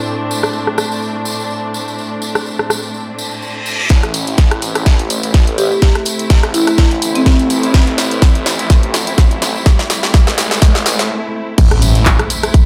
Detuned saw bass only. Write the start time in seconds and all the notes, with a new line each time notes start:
3.90 A1
4.27 A1
4.75 A1
4.99 A1
5.23 A1
5.47 A1
6.43 A1
6.91 A1
7.15 A1
7.50 A1
7.74 A1
8.11 A1
8.59 A1
8.83 A1
9.07 A1
9.31 A1
10.27 A1
10.51 G1
10.86 A1
11.58 A1
11.95 A1